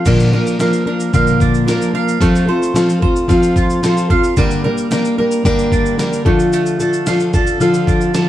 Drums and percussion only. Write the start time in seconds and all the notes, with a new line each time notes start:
0.06 kick, crash, shaker
0.20 shaker
0.47 shaker
0.60 snare, shaker
0.73 shaker
1.00 shaker
1.14 kick, shaker
1.27 shaker
1.40 kick, shaker
1.54 shaker
1.68 snare, shaker
1.82 shaker
2.08 shaker
2.22 kick, shaker
2.35 shaker
2.63 shaker
2.76 snare, shaker
2.89 shaker
3.03 kick
3.16 shaker
3.29 kick, shaker
3.43 shaker
3.56 kick, shaker
3.70 shaker
3.84 snare, shaker
3.97 shaker
4.10 kick
4.24 shaker
4.37 kick, shaker
4.51 shaker
4.78 shaker
4.91 snare, shaker
5.05 shaker
5.32 shaker
5.45 kick, shaker
5.59 shaker
5.72 kick, shaker
5.86 shaker
5.99 snare, shaker
6.13 shaker
6.26 kick
6.39 shaker
6.53 shaker
6.66 shaker
6.80 shaker
6.93 shaker
7.07 snare, shaker
7.20 shaker
7.34 kick, shaker
7.47 shaker
7.61 shaker
7.74 shaker
7.87 kick, shaker
8.01 shaker
8.14 snare, shaker